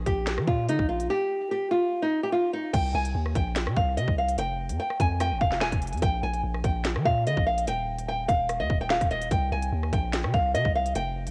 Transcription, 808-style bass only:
0.07 0.39 A#1 loud
0.38 0.47 F3 loud
0.48 0.70 A#2 loud
0.68 0.79 D3 medium
0.79 1.08 A#1 loud
2.74 2.94 C2 loud
2.94 3.14 C2 loud
3.15 3.35 D#2 loud
3.35 3.68 A#1 loud
3.67 3.76 C3 medium
3.77 3.98 C2 loud
3.97 4.07 C3 loud
4.08 4.37 C2 loud
4.38 4.71 F1 loud
4.70 4.79 F2 loud
5.00 5.33 F2 loud
5.31 5.40 G#1 loud
5.41 5.63 F1 loud
5.61 5.72 D#1 loud
5.72 5.94 F1 loud
5.93 6.02 F2 loud
6.02 6.22 A#1 loud
6.23 6.43 A#1 loud
6.44 6.63 A#1 loud
6.64 6.97 A#1 loud
6.96 7.05 F3 loud
7.05 7.27 A#2 loud
7.26 7.36 D3 loud
7.37 7.66 A#1 loud
7.67 8.26 D#1 loud
8.28 8.61 D#1 loud
8.60 8.69 D#2 loud
8.70 9.00 D#1 loud
9.01 9.30 D#1 loud
9.31 9.51 C2 loud
9.52 9.72 C2 loud
9.72 9.92 D#2 loud
9.93 10.26 A#1 loud
10.24 10.34 C3 loud
10.34 10.56 C2 loud
10.55 10.65 C3 loud
10.65 10.94 C2 loud
10.96 11.29 F1 loud
11.27 11.31 F2 loud

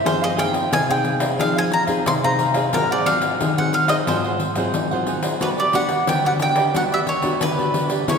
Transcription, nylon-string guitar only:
0.05 0.69 F3 medium
0.05 0.33 C4 medium
0.05 0.34 D#4 medium
0.05 0.34 G#4 medium
0.37 0.83 C4 medium
0.37 0.83 D#4 medium
0.37 0.83 G#4 medium
0.72 1.36 C3 medium
0.90 1.34 C4 medium
0.90 1.34 D#4 medium
0.90 1.35 G#4 medium
1.39 2.03 F3 medium
1.39 1.71 C4 medium
1.39 1.71 D#4 medium
1.39 1.71 G#4 medium
1.88 2.17 C4 medium
1.88 2.17 D#4 medium
1.88 2.17 G#4 medium
2.07 2.70 C3 medium
2.24 2.69 C4 medium
2.24 2.69 D#4 medium
2.24 2.69 G#4 medium
2.74 3.37 G#2 medium
2.74 2.93 F#3 medium
2.74 2.93 C4 medium
2.74 2.94 F4 medium
3.07 3.52 F#3 medium
3.07 3.52 C4 medium
3.07 3.52 F4 medium
3.41 4.04 D#3 medium
3.58 4.03 F#3 medium
3.58 4.03 C4 medium
4.08 4.71 G#2 medium
4.08 4.39 F#3 medium
4.08 4.39 C4 medium
4.08 4.40 F4 medium
4.57 4.85 F#3 medium
4.57 4.85 C4 medium
4.57 4.86 F4 medium
4.75 5.38 D#3 medium
4.93 5.37 F#3 medium
4.93 5.37 C4 medium
4.93 5.37 F4 medium
5.41 6.05 G3 medium
5.41 5.61 B3 soft
5.41 5.61 D4 medium
5.41 5.61 F#4 medium
5.74 6.19 B3 medium
5.74 6.19 D4 medium
5.74 6.20 F#4 medium
6.08 6.72 D3 medium
6.25 6.70 B3 medium
6.25 6.70 D4 medium
6.25 6.70 F#4 medium
6.74 7.38 G3 medium
6.74 7.06 B3 medium
6.74 7.07 D4 medium
6.74 7.07 F#4 medium
7.23 7.53 B3 medium
7.23 7.53 D4 medium
7.23 7.53 F#4 medium
7.42 8.06 D3 medium
7.58 8.04 B3 medium
7.58 8.04 D4 medium
7.58 8.04 F#4 medium
8.08 8.18 C#3 medium
8.08 8.18 B3 medium
8.08 8.18 E4 medium
8.08 8.18 G#4 medium

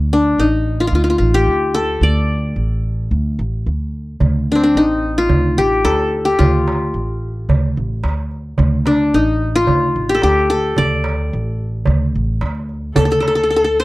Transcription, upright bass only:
0.00 0.34 D2 medium
0.38 0.88 A1 medium
0.92 1.17 D2 medium
1.20 1.45 A1 medium
1.47 1.98 D2 medium
2.01 2.52 D2 medium
2.56 3.07 A1 medium
3.11 3.36 D2 medium
3.39 3.64 A1 medium
3.66 4.17 D2 medium
4.21 4.71 D2 medium
4.75 5.26 A1 medium
5.29 5.55 D2 medium
5.57 5.83 A1 medium
5.84 6.35 D2 medium
6.40 6.90 D2 medium
6.94 7.45 A1 medium
7.49 7.74 D2 medium
7.77 8.02 A1 medium
8.04 8.55 D2 medium
8.59 9.09 D2 loud
9.14 9.64 A1 medium
9.68 9.93 D2 medium
9.96 10.21 A1 medium
10.23 10.74 D2 medium
10.78 11.29 D2 medium
11.33 11.83 A1 medium
11.87 12.12 D2 medium
12.15 12.40 A1 medium
12.42 12.92 D2 medium
12.97 13.84 D2 medium

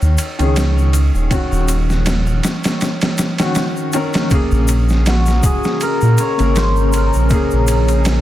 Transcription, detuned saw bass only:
0.02 0.17 D#2 medium
0.40 1.10 C#2 medium
1.15 1.29 D#1 medium
1.52 2.41 D#1 loud
4.52 5.40 A#1 loud
6.02 6.17 A#2 medium
6.40 7.11 G#1 medium
7.15 7.30 A#1 medium
7.53 8.21 A#1 medium

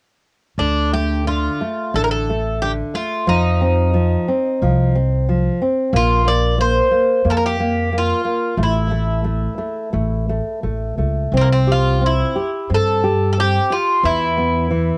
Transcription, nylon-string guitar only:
0.59 1.26 D3 soft
0.93 1.26 A3 soft
1.27 1.60 D3 soft
1.61 1.94 A3 soft
1.94 2.27 D3 soft
2.29 2.61 A3 soft
2.62 2.94 D3 soft
2.94 3.27 A3 soft
3.27 3.92 F3 medium
3.61 3.94 C4 soft
3.94 4.27 F3 soft
4.28 4.61 C4 soft
4.62 4.94 F3 soft
4.95 5.27 C4 medium
5.29 5.60 F3 soft
5.62 5.92 C4 soft
5.93 6.24 A#3 medium
6.25 6.57 A#3 medium
6.58 6.90 A#3 soft
6.91 7.24 A#3 soft
7.25 7.58 A#3 medium
7.60 7.92 A#3 soft
7.93 8.23 A#3 soft
8.25 8.57 A#3 soft
8.58 8.90 A3 medium
8.91 9.23 A3 soft
9.24 9.57 A3 soft
9.58 9.91 A3 soft
9.93 10.28 A3 medium
10.29 10.62 A3 soft
10.63 10.97 A3 soft
10.98 11.32 A3 soft
11.34 12.00 C4 medium
11.67 12.01 G4 soft
12.01 12.35 C4 soft
12.36 12.69 G4 soft
12.70 13.03 C4 soft
13.04 13.36 G4 soft
13.38 13.70 C4 soft
13.70 14.03 G4 soft
14.04 14.69 E3 medium
14.38 14.70 B3 soft
14.71 14.98 E3 soft

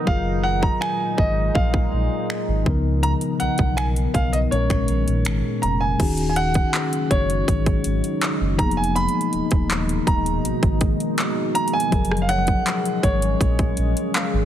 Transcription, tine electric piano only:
0.05 2.61 F#3 medium
0.05 2.62 F4 medium
0.05 2.63 G#4 medium
0.11 2.64 A#4 medium
2.65 4.47 C#3 medium
2.65 4.49 F3 medium
2.65 4.48 B3 medium
2.65 4.48 D#4 medium
2.70 4.50 A#4 medium
4.50 5.96 A#2 medium
4.50 5.97 G#3 medium
4.50 5.98 C#4 medium
4.55 5.99 A#4 medium
5.98 8.54 D#3 medium
5.98 8.55 C#4 medium
5.98 8.56 D#4 medium
5.98 8.56 F#4 medium
6.03 8.57 G#4 medium
8.57 11.50 F3 medium
8.57 11.51 B3 medium
8.57 11.52 D#4 medium
8.57 11.52 G#4 medium
8.62 11.53 A#3 medium
11.90 14.45 F3 medium
11.90 14.45 F#3 medium
11.90 14.45 G#4 medium
11.95 14.45 A#4 medium

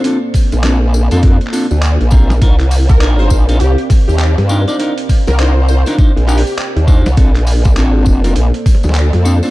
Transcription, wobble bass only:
0.53 1.09 A#1 loud
1.12 1.39 F2 loud
1.71 1.98 D2 loud
2.01 2.40 A#1 loud
2.42 3.29 C2 loud
3.31 3.59 A#1 loud
3.60 3.76 C2 loud
4.08 4.35 D#2 loud
4.38 4.65 G2 loud
5.27 5.84 C2 loud
6.16 6.43 A#1 loud
6.76 7.03 D#2 loud
7.06 7.16 C2 loud
7.17 7.79 A#1 medium
7.79 8.05 A1 medium
8.06 8.34 F1 loud
8.36 8.51 A#1 loud
8.84 9.11 D2 loud
9.14 9.41 F2 loud

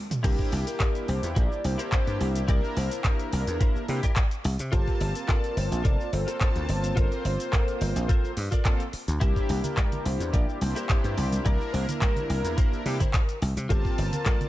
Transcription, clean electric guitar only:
0.10 muted clean electric guitar stroke soft
0.23 0.52 E4 loud
0.23 0.52 G4 loud
0.23 0.52 A#4 loud
0.23 0.52 C5 loud
0.79 1.08 E4 medium
0.79 1.08 G4 medium
0.79 1.08 A#4 medium
0.79 1.09 D5 loud
1.35 1.57 E4 medium
1.35 1.58 G4 medium
1.35 1.58 A#4 medium
1.35 1.58 C5 loud
1.78 1.99 E4 medium
1.78 2.00 G4 medium
1.78 2.00 A#4 medium
1.78 2.00 C5 loud
2.20 muted clean electric guitar stroke soft
2.48 2.76 E4 loud
2.48 2.77 G4 loud
2.48 2.77 A#4 loud
2.48 2.77 D5 loud
3.04 3.32 E4 medium
3.04 3.33 G4 medium
3.04 3.33 A#4 medium
3.04 3.33 C5 loud
3.60 3.82 E4 medium
3.60 3.82 G4 medium
3.60 3.82 A#4 medium
3.60 3.83 C5 loud
4.03 4.24 E4 medium
4.03 4.24 G4 medium
4.03 4.24 A#4 medium
4.03 4.25 D5 loud
4.44 muted clean electric guitar stroke soft
4.72 5.00 F4 loud
4.72 5.00 A4 loud
4.72 5.01 A#4 loud
4.72 5.01 C5 loud
5.28 5.56 F4 medium
5.28 5.57 A4 medium
5.28 5.57 A#4 medium
5.28 5.57 D5 loud
5.84 6.06 F4 medium
5.84 6.06 A4 medium
5.84 6.06 A#4 medium
5.84 6.07 C5 loud
6.27 6.48 F4 medium
6.27 6.48 A4 medium
6.27 6.48 A#4 medium
6.27 6.49 C5 loud
6.68 muted clean electric guitar stroke soft
6.96 7.24 F4 loud
6.96 7.25 A4 loud
6.96 7.25 A#4 loud
6.96 7.25 C5 loud
7.52 7.81 F4 medium
7.52 7.81 A4 medium
7.52 7.81 A#4 medium
7.52 7.81 C5 loud
8.08 8.30 F4 medium
8.08 8.30 A4 medium
8.08 8.31 A#4 medium
8.08 8.31 C5 loud
8.51 8.72 F4 medium
8.51 8.73 A4 medium
8.51 8.73 A#4 medium
8.51 8.73 D5 loud
8.92 muted clean electric guitar stroke soft
9.20 9.49 E4 loud
9.20 9.49 G4 loud
9.20 9.49 A#4 loud
9.20 9.50 C5 loud
9.76 10.05 E4 medium
9.76 10.05 G4 medium
9.76 10.06 A#4 medium
9.76 10.06 D5 loud
10.33 10.55 E4 medium
10.33 10.55 G4 medium
10.33 10.55 A#4 medium
10.33 10.55 D5 loud
10.75 10.97 E4 medium
10.75 10.97 G4 medium
10.75 10.97 A#4 medium
10.75 10.97 C5 medium
11.17 muted clean electric guitar stroke soft
11.45 11.73 E4 loud
11.45 11.74 G4 loud
11.45 11.74 A#4 loud
11.45 11.74 D5 loud
12.01 12.29 E4 medium
12.01 12.30 G4 medium
12.01 12.30 A#4 medium
12.01 12.30 C5 loud
12.57 12.79 E4 medium
12.57 12.79 G4 medium
12.57 12.79 A#4 medium
12.57 12.80 C5 loud
13.00 13.21 E4 medium
13.00 13.21 G4 medium
13.00 13.13 A#4 medium
13.00 13.22 C5 loud
13.14 13.40 A#4 medium
13.41 muted clean electric guitar stroke soft
13.69 13.98 F4 loud
13.69 13.98 A4 loud
13.69 13.98 A#4 loud
13.69 13.98 C5 loud
14.25 14.49 F4 medium
14.25 14.49 A4 medium
14.25 14.49 A#4 medium
14.25 14.49 D5 loud

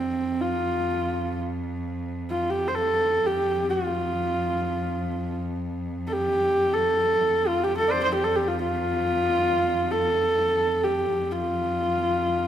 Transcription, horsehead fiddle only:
0.00 0.42 C4 medium
0.41 1.39 F4 medium
2.30 2.51 F4 medium
2.50 2.69 G4 medium
2.68 2.76 C5 medium
2.75 3.27 A4 medium
3.26 3.69 G4 medium
3.70 5.40 F4 medium
6.07 6.14 A4 medium
6.13 6.74 G4 medium
6.73 7.49 A4 medium
7.47 7.65 F4 medium
7.64 7.77 G4 medium
7.78 7.89 A4 medium
7.88 8.02 C5 medium
7.88 7.93 D5 medium
8.03 8.13 C5 medium
8.14 8.25 G4 medium
8.24 8.37 A4 medium
8.36 8.50 G4 medium
8.48 8.62 F4 medium
8.64 9.93 F4 medium
9.91 10.85 A4 medium
10.83 11.33 G4 medium
11.32 12.47 F4 medium

